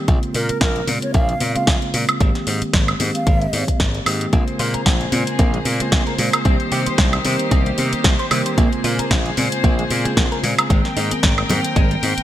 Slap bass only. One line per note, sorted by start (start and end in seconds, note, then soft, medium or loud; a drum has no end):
0.08 0.18 A#1 medium
0.35 0.49 A#2 medium
0.50 muted slap bass stroke soft
0.61 0.80 A#1 medium
0.87 0.97 A#2 loud
1.14 1.33 A#1 medium
1.41 1.55 A#2 medium
1.56 muted slap bass stroke soft
1.67 1.77 A#1 loud
1.94 2.04 A#2 medium
2.21 2.30 G#1 medium
2.47 2.61 G#2 medium
2.62 muted slap bass stroke soft
2.74 2.92 G#1 medium
3.00 3.10 G#2 medium
3.27 3.45 G#1 medium
3.53 3.63 G#2 medium
3.68 muted slap bass stroke soft
3.80 3.98 G#1 medium
4.06 4.25 G#2 medium
4.33 4.43 A#1 medium
4.59 4.74 A#2 medium
4.74 muted slap bass stroke soft
4.86 5.05 A#1 medium
5.12 5.22 A#2 loud
5.39 5.58 A#1 medium
5.65 5.80 A#2 medium
5.80 muted slap bass stroke soft
5.92 6.02 A#1 medium
6.19 6.29 A#2 medium
6.45 6.55 C2 medium
6.72 6.86 C3 medium
6.87 muted slap bass stroke soft
6.98 7.17 C2 medium
7.25 7.35 C3 loud
7.51 7.70 C2 medium
7.78 7.92 C3 medium
7.93 muted slap bass stroke soft
8.04 8.14 C2 loud
8.31 8.41 C3 medium
8.58 8.68 A#1 medium
8.84 8.98 A#2 medium
8.99 muted slap bass stroke soft
9.11 9.29 A#1 medium
9.37 9.47 A#2 loud
9.64 9.83 A#1 medium
9.91 10.05 A#2 medium
10.05 muted slap bass stroke soft
10.17 10.27 A#1 medium
10.43 10.53 A#2 medium
10.70 10.80 G#1 loud
10.97 11.11 G#2 medium
11.12 muted slap bass stroke soft
11.23 11.42 G#1 medium
11.50 11.60 G#2 loud
11.76 11.95 G#1 medium
12.03 12.13 G#2 loud
12.18 muted slap bass stroke soft